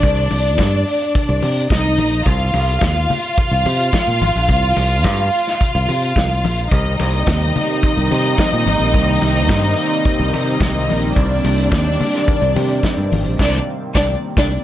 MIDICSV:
0, 0, Header, 1, 5, 480
1, 0, Start_track
1, 0, Key_signature, -3, "minor"
1, 0, Tempo, 556586
1, 30, Time_signature, 4, 2, 24, 8
1, 12625, End_track
2, 0, Start_track
2, 0, Title_t, "String section"
2, 0, Program_c, 0, 48
2, 0, Note_on_c, 0, 62, 78
2, 0, Note_on_c, 0, 74, 86
2, 1438, Note_off_c, 0, 62, 0
2, 1438, Note_off_c, 0, 74, 0
2, 1470, Note_on_c, 0, 63, 83
2, 1471, Note_on_c, 0, 75, 89
2, 1940, Note_on_c, 0, 77, 92
2, 1942, Note_off_c, 0, 63, 0
2, 1943, Note_off_c, 0, 75, 0
2, 1945, Note_on_c, 0, 65, 76
2, 5751, Note_off_c, 0, 77, 0
2, 5753, Note_off_c, 0, 65, 0
2, 5787, Note_on_c, 0, 63, 77
2, 5788, Note_on_c, 0, 75, 86
2, 9593, Note_off_c, 0, 63, 0
2, 9594, Note_off_c, 0, 75, 0
2, 9622, Note_on_c, 0, 74, 81
2, 9625, Note_on_c, 0, 62, 77
2, 11513, Note_off_c, 0, 74, 0
2, 11514, Note_off_c, 0, 62, 0
2, 11546, Note_on_c, 0, 62, 86
2, 11550, Note_on_c, 0, 74, 83
2, 11712, Note_off_c, 0, 62, 0
2, 11714, Note_off_c, 0, 74, 0
2, 12025, Note_on_c, 0, 62, 92
2, 12028, Note_on_c, 0, 74, 93
2, 12191, Note_off_c, 0, 62, 0
2, 12193, Note_off_c, 0, 74, 0
2, 12392, Note_on_c, 0, 74, 92
2, 12394, Note_on_c, 0, 62, 87
2, 12556, Note_off_c, 0, 74, 0
2, 12557, Note_off_c, 0, 62, 0
2, 12625, End_track
3, 0, Start_track
3, 0, Title_t, "Analog synth pad"
3, 0, Program_c, 1, 89
3, 5795, Note_on_c, 1, 60, 73
3, 5797, Note_on_c, 1, 51, 87
3, 5798, Note_on_c, 1, 55, 74
3, 5798, Note_on_c, 1, 58, 72
3, 5799, Note_on_c, 1, 48, 78
3, 12625, Note_off_c, 1, 48, 0
3, 12625, Note_off_c, 1, 51, 0
3, 12625, Note_off_c, 1, 55, 0
3, 12625, Note_off_c, 1, 58, 0
3, 12625, Note_off_c, 1, 60, 0
3, 12625, End_track
4, 0, Start_track
4, 0, Title_t, "Fingered electric bass"
4, 0, Program_c, 2, 33
4, 31, Note_on_c, 2, 36, 119
4, 234, Note_off_c, 2, 36, 0
4, 272, Note_on_c, 2, 36, 92
4, 508, Note_off_c, 2, 36, 0
4, 508, Note_on_c, 2, 43, 92
4, 713, Note_off_c, 2, 43, 0
4, 1111, Note_on_c, 2, 36, 108
4, 1213, Note_off_c, 2, 36, 0
4, 1229, Note_on_c, 2, 48, 95
4, 1433, Note_off_c, 2, 48, 0
4, 1471, Note_on_c, 2, 36, 87
4, 1714, Note_off_c, 2, 36, 0
4, 1714, Note_on_c, 2, 34, 88
4, 1916, Note_off_c, 2, 34, 0
4, 1952, Note_on_c, 2, 36, 109
4, 2155, Note_off_c, 2, 36, 0
4, 2192, Note_on_c, 2, 36, 95
4, 2395, Note_off_c, 2, 36, 0
4, 2432, Note_on_c, 2, 39, 88
4, 2635, Note_off_c, 2, 39, 0
4, 3031, Note_on_c, 2, 36, 104
4, 3133, Note_off_c, 2, 36, 0
4, 3153, Note_on_c, 2, 48, 103
4, 3356, Note_off_c, 2, 48, 0
4, 3513, Note_on_c, 2, 46, 78
4, 3614, Note_off_c, 2, 46, 0
4, 3634, Note_on_c, 2, 32, 102
4, 3735, Note_off_c, 2, 32, 0
4, 3756, Note_on_c, 2, 34, 84
4, 3856, Note_off_c, 2, 34, 0
4, 3874, Note_on_c, 2, 36, 110
4, 4076, Note_off_c, 2, 36, 0
4, 4111, Note_on_c, 2, 36, 96
4, 4354, Note_off_c, 2, 36, 0
4, 4354, Note_on_c, 2, 43, 87
4, 4556, Note_off_c, 2, 43, 0
4, 4958, Note_on_c, 2, 36, 109
4, 5057, Note_off_c, 2, 36, 0
4, 5076, Note_on_c, 2, 48, 90
4, 5277, Note_off_c, 2, 48, 0
4, 5313, Note_on_c, 2, 36, 90
4, 5552, Note_off_c, 2, 36, 0
4, 5552, Note_on_c, 2, 34, 89
4, 5754, Note_off_c, 2, 34, 0
4, 5794, Note_on_c, 2, 36, 104
4, 5996, Note_off_c, 2, 36, 0
4, 6036, Note_on_c, 2, 36, 99
4, 6237, Note_off_c, 2, 36, 0
4, 6271, Note_on_c, 2, 39, 86
4, 6474, Note_off_c, 2, 39, 0
4, 6876, Note_on_c, 2, 36, 86
4, 6975, Note_off_c, 2, 36, 0
4, 6993, Note_on_c, 2, 48, 102
4, 7195, Note_off_c, 2, 48, 0
4, 7355, Note_on_c, 2, 46, 73
4, 7455, Note_off_c, 2, 46, 0
4, 7469, Note_on_c, 2, 32, 100
4, 7571, Note_off_c, 2, 32, 0
4, 7590, Note_on_c, 2, 34, 81
4, 7692, Note_off_c, 2, 34, 0
4, 7712, Note_on_c, 2, 36, 116
4, 7914, Note_off_c, 2, 36, 0
4, 7953, Note_on_c, 2, 36, 90
4, 8190, Note_off_c, 2, 36, 0
4, 8190, Note_on_c, 2, 43, 98
4, 8393, Note_off_c, 2, 43, 0
4, 8792, Note_on_c, 2, 36, 96
4, 8893, Note_off_c, 2, 36, 0
4, 8908, Note_on_c, 2, 48, 92
4, 9112, Note_off_c, 2, 48, 0
4, 9148, Note_on_c, 2, 36, 87
4, 9388, Note_off_c, 2, 36, 0
4, 9388, Note_on_c, 2, 34, 91
4, 9591, Note_off_c, 2, 34, 0
4, 9629, Note_on_c, 2, 36, 108
4, 9832, Note_off_c, 2, 36, 0
4, 9870, Note_on_c, 2, 36, 99
4, 10073, Note_off_c, 2, 36, 0
4, 10109, Note_on_c, 2, 39, 103
4, 10312, Note_off_c, 2, 39, 0
4, 10710, Note_on_c, 2, 36, 105
4, 10812, Note_off_c, 2, 36, 0
4, 10830, Note_on_c, 2, 48, 105
4, 11033, Note_off_c, 2, 48, 0
4, 11189, Note_on_c, 2, 43, 72
4, 11291, Note_off_c, 2, 43, 0
4, 11313, Note_on_c, 2, 32, 97
4, 11414, Note_off_c, 2, 32, 0
4, 11435, Note_on_c, 2, 34, 93
4, 11535, Note_off_c, 2, 34, 0
4, 11552, Note_on_c, 2, 36, 110
4, 11715, Note_off_c, 2, 36, 0
4, 12033, Note_on_c, 2, 36, 102
4, 12196, Note_off_c, 2, 36, 0
4, 12393, Note_on_c, 2, 36, 87
4, 12556, Note_off_c, 2, 36, 0
4, 12625, End_track
5, 0, Start_track
5, 0, Title_t, "Drums"
5, 19, Note_on_c, 9, 62, 31
5, 29, Note_on_c, 9, 36, 100
5, 32, Note_on_c, 9, 42, 59
5, 105, Note_off_c, 9, 62, 0
5, 115, Note_off_c, 9, 36, 0
5, 118, Note_off_c, 9, 42, 0
5, 266, Note_on_c, 9, 62, 48
5, 270, Note_on_c, 9, 46, 67
5, 352, Note_off_c, 9, 62, 0
5, 356, Note_off_c, 9, 46, 0
5, 389, Note_on_c, 9, 42, 39
5, 476, Note_off_c, 9, 42, 0
5, 501, Note_on_c, 9, 63, 78
5, 505, Note_on_c, 9, 42, 57
5, 508, Note_on_c, 9, 36, 99
5, 521, Note_on_c, 9, 38, 101
5, 587, Note_off_c, 9, 63, 0
5, 592, Note_off_c, 9, 42, 0
5, 594, Note_off_c, 9, 36, 0
5, 607, Note_off_c, 9, 38, 0
5, 753, Note_on_c, 9, 46, 69
5, 840, Note_off_c, 9, 46, 0
5, 864, Note_on_c, 9, 42, 46
5, 951, Note_off_c, 9, 42, 0
5, 993, Note_on_c, 9, 36, 108
5, 997, Note_on_c, 9, 42, 70
5, 1080, Note_off_c, 9, 36, 0
5, 1083, Note_off_c, 9, 42, 0
5, 1230, Note_on_c, 9, 62, 52
5, 1235, Note_on_c, 9, 46, 67
5, 1316, Note_off_c, 9, 62, 0
5, 1322, Note_off_c, 9, 46, 0
5, 1352, Note_on_c, 9, 42, 49
5, 1438, Note_off_c, 9, 42, 0
5, 1469, Note_on_c, 9, 36, 97
5, 1471, Note_on_c, 9, 63, 72
5, 1484, Note_on_c, 9, 38, 113
5, 1484, Note_on_c, 9, 42, 63
5, 1555, Note_off_c, 9, 36, 0
5, 1558, Note_off_c, 9, 63, 0
5, 1570, Note_off_c, 9, 38, 0
5, 1570, Note_off_c, 9, 42, 0
5, 1713, Note_on_c, 9, 63, 75
5, 1715, Note_on_c, 9, 46, 57
5, 1799, Note_off_c, 9, 63, 0
5, 1802, Note_off_c, 9, 46, 0
5, 1824, Note_on_c, 9, 42, 44
5, 1910, Note_off_c, 9, 42, 0
5, 1948, Note_on_c, 9, 62, 34
5, 1949, Note_on_c, 9, 36, 99
5, 1951, Note_on_c, 9, 42, 54
5, 2034, Note_off_c, 9, 62, 0
5, 2035, Note_off_c, 9, 36, 0
5, 2037, Note_off_c, 9, 42, 0
5, 2188, Note_on_c, 9, 46, 61
5, 2189, Note_on_c, 9, 62, 55
5, 2274, Note_off_c, 9, 46, 0
5, 2275, Note_off_c, 9, 62, 0
5, 2308, Note_on_c, 9, 42, 42
5, 2394, Note_off_c, 9, 42, 0
5, 2422, Note_on_c, 9, 42, 54
5, 2425, Note_on_c, 9, 63, 76
5, 2428, Note_on_c, 9, 36, 106
5, 2437, Note_on_c, 9, 38, 101
5, 2508, Note_off_c, 9, 42, 0
5, 2511, Note_off_c, 9, 63, 0
5, 2514, Note_off_c, 9, 36, 0
5, 2523, Note_off_c, 9, 38, 0
5, 2671, Note_on_c, 9, 46, 70
5, 2675, Note_on_c, 9, 64, 79
5, 2757, Note_off_c, 9, 46, 0
5, 2761, Note_off_c, 9, 64, 0
5, 2782, Note_on_c, 9, 42, 42
5, 2869, Note_off_c, 9, 42, 0
5, 2912, Note_on_c, 9, 36, 119
5, 2912, Note_on_c, 9, 42, 66
5, 2998, Note_off_c, 9, 42, 0
5, 2999, Note_off_c, 9, 36, 0
5, 3152, Note_on_c, 9, 46, 74
5, 3157, Note_on_c, 9, 62, 58
5, 3238, Note_off_c, 9, 46, 0
5, 3243, Note_off_c, 9, 62, 0
5, 3268, Note_on_c, 9, 42, 47
5, 3354, Note_off_c, 9, 42, 0
5, 3389, Note_on_c, 9, 36, 105
5, 3398, Note_on_c, 9, 63, 80
5, 3399, Note_on_c, 9, 42, 60
5, 3400, Note_on_c, 9, 38, 112
5, 3475, Note_off_c, 9, 36, 0
5, 3484, Note_off_c, 9, 63, 0
5, 3486, Note_off_c, 9, 38, 0
5, 3486, Note_off_c, 9, 42, 0
5, 3635, Note_on_c, 9, 46, 62
5, 3637, Note_on_c, 9, 63, 74
5, 3721, Note_off_c, 9, 46, 0
5, 3724, Note_off_c, 9, 63, 0
5, 3741, Note_on_c, 9, 42, 44
5, 3827, Note_off_c, 9, 42, 0
5, 3866, Note_on_c, 9, 62, 37
5, 3870, Note_on_c, 9, 42, 62
5, 3871, Note_on_c, 9, 36, 101
5, 3952, Note_off_c, 9, 62, 0
5, 3956, Note_off_c, 9, 42, 0
5, 3957, Note_off_c, 9, 36, 0
5, 4109, Note_on_c, 9, 62, 57
5, 4113, Note_on_c, 9, 46, 66
5, 4195, Note_off_c, 9, 62, 0
5, 4199, Note_off_c, 9, 46, 0
5, 4231, Note_on_c, 9, 42, 40
5, 4317, Note_off_c, 9, 42, 0
5, 4342, Note_on_c, 9, 42, 60
5, 4348, Note_on_c, 9, 63, 77
5, 4351, Note_on_c, 9, 36, 101
5, 4358, Note_on_c, 9, 38, 99
5, 4428, Note_off_c, 9, 42, 0
5, 4434, Note_off_c, 9, 63, 0
5, 4437, Note_off_c, 9, 36, 0
5, 4444, Note_off_c, 9, 38, 0
5, 4594, Note_on_c, 9, 46, 65
5, 4680, Note_off_c, 9, 46, 0
5, 4704, Note_on_c, 9, 42, 43
5, 4722, Note_on_c, 9, 38, 38
5, 4790, Note_off_c, 9, 42, 0
5, 4808, Note_off_c, 9, 38, 0
5, 4836, Note_on_c, 9, 36, 106
5, 4838, Note_on_c, 9, 42, 66
5, 4923, Note_off_c, 9, 36, 0
5, 4925, Note_off_c, 9, 42, 0
5, 5077, Note_on_c, 9, 62, 54
5, 5078, Note_on_c, 9, 46, 65
5, 5163, Note_off_c, 9, 62, 0
5, 5164, Note_off_c, 9, 46, 0
5, 5195, Note_on_c, 9, 42, 43
5, 5281, Note_off_c, 9, 42, 0
5, 5312, Note_on_c, 9, 36, 92
5, 5318, Note_on_c, 9, 63, 73
5, 5325, Note_on_c, 9, 38, 112
5, 5325, Note_on_c, 9, 42, 64
5, 5398, Note_off_c, 9, 36, 0
5, 5404, Note_off_c, 9, 63, 0
5, 5411, Note_off_c, 9, 42, 0
5, 5412, Note_off_c, 9, 38, 0
5, 5556, Note_on_c, 9, 46, 69
5, 5560, Note_on_c, 9, 63, 80
5, 5642, Note_off_c, 9, 46, 0
5, 5646, Note_off_c, 9, 63, 0
5, 5665, Note_on_c, 9, 42, 47
5, 5751, Note_off_c, 9, 42, 0
5, 5791, Note_on_c, 9, 36, 109
5, 5793, Note_on_c, 9, 42, 59
5, 5877, Note_off_c, 9, 36, 0
5, 5879, Note_off_c, 9, 42, 0
5, 6030, Note_on_c, 9, 46, 65
5, 6034, Note_on_c, 9, 62, 59
5, 6116, Note_off_c, 9, 46, 0
5, 6120, Note_off_c, 9, 62, 0
5, 6150, Note_on_c, 9, 42, 43
5, 6236, Note_off_c, 9, 42, 0
5, 6261, Note_on_c, 9, 42, 52
5, 6269, Note_on_c, 9, 36, 107
5, 6271, Note_on_c, 9, 63, 80
5, 6276, Note_on_c, 9, 38, 111
5, 6347, Note_off_c, 9, 42, 0
5, 6356, Note_off_c, 9, 36, 0
5, 6358, Note_off_c, 9, 63, 0
5, 6362, Note_off_c, 9, 38, 0
5, 6513, Note_on_c, 9, 46, 70
5, 6519, Note_on_c, 9, 64, 86
5, 6599, Note_off_c, 9, 46, 0
5, 6605, Note_off_c, 9, 64, 0
5, 6623, Note_on_c, 9, 42, 43
5, 6710, Note_off_c, 9, 42, 0
5, 6754, Note_on_c, 9, 36, 111
5, 6756, Note_on_c, 9, 42, 67
5, 6840, Note_off_c, 9, 36, 0
5, 6842, Note_off_c, 9, 42, 0
5, 6995, Note_on_c, 9, 46, 68
5, 6999, Note_on_c, 9, 62, 50
5, 7081, Note_off_c, 9, 46, 0
5, 7085, Note_off_c, 9, 62, 0
5, 7109, Note_on_c, 9, 42, 49
5, 7195, Note_off_c, 9, 42, 0
5, 7229, Note_on_c, 9, 36, 103
5, 7238, Note_on_c, 9, 63, 71
5, 7239, Note_on_c, 9, 38, 109
5, 7239, Note_on_c, 9, 42, 59
5, 7315, Note_off_c, 9, 36, 0
5, 7324, Note_off_c, 9, 63, 0
5, 7325, Note_off_c, 9, 38, 0
5, 7325, Note_off_c, 9, 42, 0
5, 7474, Note_on_c, 9, 46, 61
5, 7481, Note_on_c, 9, 63, 82
5, 7560, Note_off_c, 9, 46, 0
5, 7567, Note_off_c, 9, 63, 0
5, 7582, Note_on_c, 9, 42, 47
5, 7668, Note_off_c, 9, 42, 0
5, 7710, Note_on_c, 9, 36, 93
5, 7710, Note_on_c, 9, 62, 31
5, 7711, Note_on_c, 9, 42, 62
5, 7796, Note_off_c, 9, 36, 0
5, 7796, Note_off_c, 9, 62, 0
5, 7797, Note_off_c, 9, 42, 0
5, 7951, Note_on_c, 9, 46, 58
5, 7951, Note_on_c, 9, 62, 53
5, 8037, Note_off_c, 9, 46, 0
5, 8037, Note_off_c, 9, 62, 0
5, 8070, Note_on_c, 9, 42, 42
5, 8156, Note_off_c, 9, 42, 0
5, 8179, Note_on_c, 9, 42, 58
5, 8186, Note_on_c, 9, 63, 77
5, 8187, Note_on_c, 9, 36, 98
5, 8195, Note_on_c, 9, 38, 108
5, 8265, Note_off_c, 9, 42, 0
5, 8273, Note_off_c, 9, 36, 0
5, 8273, Note_off_c, 9, 63, 0
5, 8281, Note_off_c, 9, 38, 0
5, 8428, Note_on_c, 9, 46, 68
5, 8514, Note_off_c, 9, 46, 0
5, 8536, Note_on_c, 9, 42, 45
5, 8623, Note_off_c, 9, 42, 0
5, 8669, Note_on_c, 9, 42, 65
5, 8670, Note_on_c, 9, 36, 116
5, 8756, Note_off_c, 9, 42, 0
5, 8757, Note_off_c, 9, 36, 0
5, 8907, Note_on_c, 9, 46, 73
5, 8915, Note_on_c, 9, 62, 52
5, 8993, Note_off_c, 9, 46, 0
5, 9001, Note_off_c, 9, 62, 0
5, 9025, Note_on_c, 9, 42, 46
5, 9111, Note_off_c, 9, 42, 0
5, 9146, Note_on_c, 9, 36, 100
5, 9156, Note_on_c, 9, 38, 117
5, 9156, Note_on_c, 9, 42, 63
5, 9159, Note_on_c, 9, 63, 73
5, 9232, Note_off_c, 9, 36, 0
5, 9242, Note_off_c, 9, 38, 0
5, 9242, Note_off_c, 9, 42, 0
5, 9246, Note_off_c, 9, 63, 0
5, 9394, Note_on_c, 9, 46, 66
5, 9402, Note_on_c, 9, 63, 82
5, 9480, Note_off_c, 9, 46, 0
5, 9488, Note_off_c, 9, 63, 0
5, 9501, Note_on_c, 9, 42, 48
5, 9587, Note_off_c, 9, 42, 0
5, 9627, Note_on_c, 9, 36, 100
5, 9629, Note_on_c, 9, 42, 60
5, 9713, Note_off_c, 9, 36, 0
5, 9715, Note_off_c, 9, 42, 0
5, 9867, Note_on_c, 9, 46, 62
5, 9872, Note_on_c, 9, 62, 54
5, 9953, Note_off_c, 9, 46, 0
5, 9958, Note_off_c, 9, 62, 0
5, 9987, Note_on_c, 9, 42, 45
5, 10073, Note_off_c, 9, 42, 0
5, 10099, Note_on_c, 9, 42, 65
5, 10105, Note_on_c, 9, 36, 115
5, 10107, Note_on_c, 9, 63, 78
5, 10115, Note_on_c, 9, 38, 104
5, 10185, Note_off_c, 9, 42, 0
5, 10192, Note_off_c, 9, 36, 0
5, 10193, Note_off_c, 9, 63, 0
5, 10201, Note_off_c, 9, 38, 0
5, 10347, Note_on_c, 9, 46, 72
5, 10353, Note_on_c, 9, 64, 85
5, 10434, Note_off_c, 9, 46, 0
5, 10439, Note_off_c, 9, 64, 0
5, 10458, Note_on_c, 9, 42, 41
5, 10476, Note_on_c, 9, 38, 41
5, 10544, Note_off_c, 9, 42, 0
5, 10562, Note_off_c, 9, 38, 0
5, 10590, Note_on_c, 9, 36, 120
5, 10591, Note_on_c, 9, 42, 62
5, 10676, Note_off_c, 9, 36, 0
5, 10677, Note_off_c, 9, 42, 0
5, 10831, Note_on_c, 9, 46, 59
5, 10836, Note_on_c, 9, 62, 57
5, 10917, Note_off_c, 9, 46, 0
5, 10922, Note_off_c, 9, 62, 0
5, 10947, Note_on_c, 9, 42, 47
5, 11033, Note_off_c, 9, 42, 0
5, 11067, Note_on_c, 9, 36, 91
5, 11078, Note_on_c, 9, 38, 105
5, 11078, Note_on_c, 9, 42, 61
5, 11078, Note_on_c, 9, 63, 66
5, 11153, Note_off_c, 9, 36, 0
5, 11164, Note_off_c, 9, 38, 0
5, 11164, Note_off_c, 9, 42, 0
5, 11164, Note_off_c, 9, 63, 0
5, 11315, Note_on_c, 9, 46, 64
5, 11321, Note_on_c, 9, 63, 79
5, 11401, Note_off_c, 9, 46, 0
5, 11407, Note_off_c, 9, 63, 0
5, 11422, Note_on_c, 9, 42, 46
5, 11509, Note_off_c, 9, 42, 0
5, 11550, Note_on_c, 9, 36, 107
5, 11550, Note_on_c, 9, 49, 75
5, 11560, Note_on_c, 9, 38, 105
5, 11636, Note_off_c, 9, 36, 0
5, 11636, Note_off_c, 9, 49, 0
5, 11646, Note_off_c, 9, 38, 0
5, 12030, Note_on_c, 9, 36, 87
5, 12038, Note_on_c, 9, 38, 99
5, 12117, Note_off_c, 9, 36, 0
5, 12124, Note_off_c, 9, 38, 0
5, 12391, Note_on_c, 9, 36, 124
5, 12399, Note_on_c, 9, 38, 115
5, 12478, Note_off_c, 9, 36, 0
5, 12485, Note_off_c, 9, 38, 0
5, 12625, End_track
0, 0, End_of_file